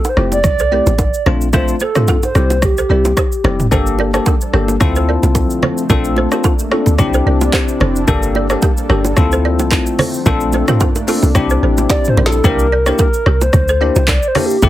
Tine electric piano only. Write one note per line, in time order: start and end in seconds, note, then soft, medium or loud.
0.17 0.38 A3 medium
0.17 0.38 C4 medium
0.17 0.38 E4 medium
0.17 0.38 G4 medium
0.71 0.93 A3 medium
0.71 0.93 C4 medium
0.71 0.93 E4 medium
0.71 0.93 G4 medium
1.26 1.47 A3 medium
1.26 1.47 C4 medium
1.26 1.47 D4 medium
1.26 1.47 F4 medium
1.53 1.74 A3 medium
1.53 1.75 C4 medium
1.53 1.75 D4 medium
1.53 1.75 F4 loud
1.96 2.15 A3 medium
1.96 2.15 C4 medium
1.96 2.16 D4 medium
1.96 2.16 F4 medium
2.35 2.56 G3 medium
2.35 2.56 C4 medium
2.35 2.56 E4 medium
2.35 2.56 G4 medium
2.89 3.11 G3 medium
2.89 3.11 C4 medium
2.89 3.11 E4 medium
2.89 3.11 G4 medium
3.44 3.65 G3 medium
3.44 3.65 C4 medium
3.44 3.66 E4 medium
3.44 3.66 G4 medium
3.71 4.10 A#3 medium
3.71 4.10 D4 medium
3.71 4.10 G4 medium
3.71 4.10 A4 loud
4.13 4.33 A#3 medium
4.13 4.33 D4 medium
4.13 4.34 G4 medium
4.13 4.34 A4 medium
4.53 4.74 A#3 medium
4.53 4.74 D4 medium
4.53 4.75 G4 medium
4.53 4.75 A4 medium
4.80 5.82 C4 medium
4.80 5.82 E4 medium
4.80 5.82 F4 medium
4.80 5.82 A4 loud
5.89 6.28 C4 loud
5.89 6.28 D4 medium
5.89 6.28 F4 medium
5.89 6.28 A4 loud
6.31 6.51 C4 medium
6.31 6.52 D4 medium
6.31 6.52 F4 medium
6.31 6.52 A4 medium
6.71 6.92 C4 medium
6.71 6.93 D4 medium
6.71 6.93 F4 medium
6.71 6.93 A4 medium
6.98 8.00 C4 medium
6.98 8.00 D4 medium
6.98 8.00 E4 medium
6.98 8.00 G4 loud
8.07 8.46 A#3 loud
8.07 8.46 D4 medium
8.07 8.46 G4 medium
8.07 8.47 A4 loud
8.50 8.70 A#3 medium
8.50 8.70 D4 medium
8.50 8.70 G4 medium
8.50 8.70 A4 medium
8.89 9.11 A#3 medium
8.89 9.11 D4 medium
8.89 9.11 G4 medium
8.89 9.11 A4 medium
9.17 10.18 C4 medium
9.17 10.18 E4 medium
9.17 10.18 F4 medium
9.17 10.18 A4 loud
10.26 10.65 C4 loud
10.26 10.65 D4 medium
10.26 10.65 F4 medium
10.26 10.65 A4 loud
10.68 10.88 C4 medium
10.68 10.88 D4 medium
10.68 10.88 F4 medium
10.68 10.88 A4 medium
11.07 11.29 C4 medium
11.07 11.29 D4 medium
11.07 11.29 F4 medium
11.07 11.29 A4 medium
11.35 12.36 C4 medium
11.35 12.36 D4 medium
11.35 12.36 E4 medium
11.35 12.36 G4 loud
12.44 12.65 A#3 loud
12.44 12.65 D4 medium
12.44 12.65 E4 medium
12.44 12.65 G4 loud
12.87 13.06 A#3 medium
12.87 13.06 D4 medium
12.87 13.07 E4 medium
12.87 13.07 G4 medium
13.81 14.02 A#3 medium
13.81 14.02 D4 medium
13.81 14.02 E4 medium
13.81 14.02 G4 medium
14.35 14.56 A#3 medium
14.35 14.56 D4 medium
14.35 14.56 E4 medium
14.35 14.56 G4 medium
14.62 14.69 A3 loud
14.62 14.69 C4 medium
14.62 14.69 E4 medium
14.62 14.69 G4 loud